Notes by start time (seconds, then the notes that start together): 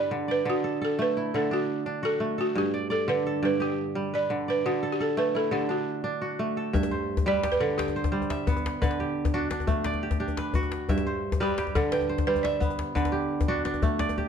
Already playing: G2 G3 G4 A4 B4 D5
0.11 D3
0.28 B4 D5
0.45 D3
0.50 F#4
0.64 A4
0.82 A4
0.99 A3 B4
1.17 E4
1.34 D3 A4
1.51 D4 F#4
1.86 D4
2.03 F#4 A4
2.20 A3
2.38 F#4 A4
2.55 G2 G4
2.74 D5
2.90 A4 D5
3.08 D3 B4
3.27 A4
3.43 G2 B4 D5
3.60 G4
3.95 G3
4.14 B4 D5
4.30 D3
4.48 B4 D5
4.66 D3 F#4
4.83 A4
4.92 G4
5.00 A4
5.17 A3 B4
5.35 E4 A4
5.51 D3 G4 A4
5.69 D4 F#4
6.04 D4
6.22 F#4
6.39 A3
6.57 A4
6.73 G2 E5, djembe bass
6.83 djembe slap, djembe tone
6.91 C5, djembe slap
7.17 djembe slap, djembe tone, djembe bass
7.26 G3 B4 D5, djembe slap
7.43 G4, djembe slap
7.52 B4, djembe tone
7.60 D3 A4
7.78 G4 G5, djembe slap
7.88 djembe tone
7.96 C5, djembe slap
8.04 djembe slap, djembe bass
8.12 G3 C5
8.22 djembe tone
8.30 E5, djembe slap
8.39 djembe slap
8.47 B3, djembe bass
8.57 djembe slap, djembe tone
8.66 djembe slap
8.82 D3 B4, djembe bass
8.91 djembe slap
9.00 G4, djembe slap
9.25 djembe slap, djembe tone, djembe bass
9.34 D4 F#4
9.51 D4, djembe slap
9.60 djembe tone
9.67 A3, djembe slap, djembe bass
9.84 D5, djembe slap
9.94 djembe tone
10.02 G4, djembe slap
10.11 djembe slap, djembe bass
10.20 D4 G4
10.28 djembe tone
10.37 B4, djembe slap
10.45 djembe slap
10.54 F#4, djembe bass
10.63 djembe slap, djembe tone
10.72 djembe slap
10.89 G2 E5, djembe bass
10.98 djembe slap, djembe tone
11.06 C5, djembe slap
11.32 djembe slap, djembe tone, djembe bass
11.40 G3 G4 B4
11.58 G4, djembe slap
11.67 djembe tone
11.75 D3 A4, djembe slap, djembe bass
11.92 B4 G5, djembe slap
12.01 djembe tone
12.09 C5, djembe slap
12.18 djembe slap, djembe bass
12.27 G3 B4 C5
12.36 djembe tone
12.43 D5 E5, djembe slap
12.53 djembe slap
12.60 B3, djembe bass
12.70 djembe slap, djembe tone
12.79 djembe slap
12.95 D3 B4, djembe bass
13.05 djembe slap, djembe tone
13.12 G4
13.22 djembe slap
13.31 djembe slap
13.41 djembe slap, djembe tone, djembe bass
13.48 D4 F#4
13.65 D4, djembe slap
13.74 djembe tone
13.82 A3, djembe slap, djembe bass
13.99 D5, djembe slap
14.09 djembe slap, djembe tone
14.18 G4, djembe bass